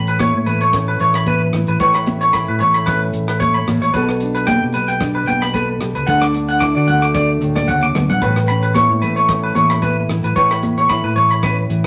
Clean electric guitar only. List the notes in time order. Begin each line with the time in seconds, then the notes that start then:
0.08 B4
0.20 C#5
0.46 B4
0.61 C#5
0.88 B4
1.01 C#5
1.15 B5
1.28 B4
1.68 B4
1.80 C#5
1.95 B5
2.21 C#5
2.33 B5
2.48 B4
2.60 C#5
2.74 B5
2.86 B4
3.28 B4
3.40 C#5
3.54 B5
3.82 C#5
3.94 B4
4.35 B4
4.47 G5
4.74 B4
4.88 G5
5.15 B4
5.27 G5
5.42 B5
5.54 B4
5.95 B4
6.07 F#5
6.22 D6
6.49 F#5
6.60 D6
6.75 D5
6.88 F#5
7.02 D6
7.15 D5
7.56 D5
7.68 F#5
7.83 D6
8.10 F#5
8.22 B4
8.48 B5
8.63 B4
8.74 C#5
9.02 B4
9.16 C#5
9.44 B4
9.55 C#5
9.70 B5
9.82 B4
10.24 B4
10.36 C#5
10.51 B5
10.78 C#5
10.89 B5
11.04 B4
11.16 C#5
11.31 B5
11.43 B4